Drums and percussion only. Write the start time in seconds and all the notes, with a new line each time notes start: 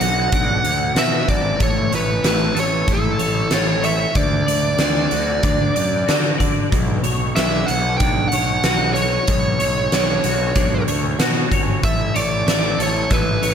0.01 closed hi-hat
0.32 kick, closed hi-hat
0.64 closed hi-hat
0.96 snare, closed hi-hat
1.29 kick, closed hi-hat
1.60 kick, closed hi-hat
1.92 closed hi-hat
2.24 snare, closed hi-hat
2.57 closed hi-hat
2.88 kick, closed hi-hat
3.19 closed hi-hat
3.51 snare, closed hi-hat
3.84 closed hi-hat
4.15 kick, closed hi-hat
4.48 closed hi-hat
4.78 snare, closed hi-hat
5.11 closed hi-hat
5.43 kick, closed hi-hat
5.76 closed hi-hat
6.08 snare, closed hi-hat
6.40 kick, closed hi-hat
6.72 kick, closed hi-hat
7.04 closed hi-hat
7.36 snare, closed hi-hat
7.68 closed hi-hat
8.00 kick, closed hi-hat
8.32 closed hi-hat
8.64 snare, closed hi-hat
8.96 closed hi-hat
9.27 kick, closed hi-hat
9.60 closed hi-hat
9.92 snare, closed hi-hat
10.24 closed hi-hat
10.55 kick, closed hi-hat
10.88 closed hi-hat
11.19 snare, closed hi-hat
11.52 kick, closed hi-hat
11.83 kick, closed hi-hat
12.16 closed hi-hat
12.48 snare, closed hi-hat
12.80 closed hi-hat
13.10 kick, closed hi-hat
13.43 closed hi-hat